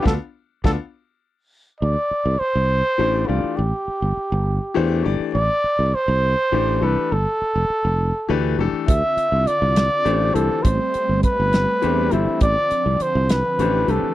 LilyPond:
<<
  \new Staff \with { instrumentName = "Trumpet" } { \time 6/8 \key d \dorian \tempo 4. = 68 a'8 r8 a'8 r4. | d''4 c''4. f'8 | g'2~ g'8 r8 | d''4 c''4. b'8 |
a'2~ a'8 r8 | e''4 d''4. a'8 | c''4 b'4. e'8 | d''4 c''8 b'4 a'8 | }
  \new Staff \with { instrumentName = "Grand piano" } { \time 6/8 \key d \dorian <b d' f'>8 r8 <b d' f'>8 r4. | r2 <e a d' g' c''>8 <e a d' g' d''>8 | r2 <e a d' g' c''>8 <e a d' g' d''>8 | r2 <e a d' g' c''>8 <e a d' g' a'>8 |
r2 <e a d' g' b'>8 <e a d' g' a'>8 | r2 <e a d' g' c''>8 <e a d' g' c''>8 | r2 <e a d' g' c''>8 <e a d' g' c''>8 | r2 <e a d' g' c''>8 <e a d' g' b'>8 | }
  \new Staff \with { instrumentName = "Analog synth pad" } { \clef bass \time 6/8 \key d \dorian r2. | r2. | r2. | r2. |
r2. | <d c' f'>2. | <g a>2. | <d f>2. | }
  \new Staff \with { instrumentName = "Fretless electric bass" } { \clef bass \time 6/8 \key d \dorian d,16 r8. d,16 r4. r16 | d,16 r8 c,16 r16 c,8 r16 a,,8 c,16 r16 | a,,16 r8 g,,16 r16 g,,8 r16 e,8 g,,16 r16 | a,,16 r8 c,16 r16 c,8 r16 a,,8 c,16 r16 |
g,,16 r8 f,,16 r16 f,,8 r16 d,8 f,,16 r16 | d,16 r8 c,16 r16 c,8 r16 a,,8 c,16 r16 | a,,16 r8 g,,16 r16 g,,8 r16 e,8 g,,16 r16 | a,,16 r8 c,16 r16 c,8 r16 a,,8 c,16 r16 | }
  \new DrumStaff \with { instrumentName = "Drums" } \drummode { \time 6/8 <bd sn>4 <bd sn>8 r4. | r4. r4. | r4. r4. | r4. r4. |
r4. r4. | <hh bd>8 hh8 hh8 <hh sn>8 hh8 hh8 | <hh bd>8 hh8 <hh bd>8 <hh sn>8 hh8 hh8 | <hh bd>8 hh8 hh8 <hh sn>8 hh8 hh8 | }
>>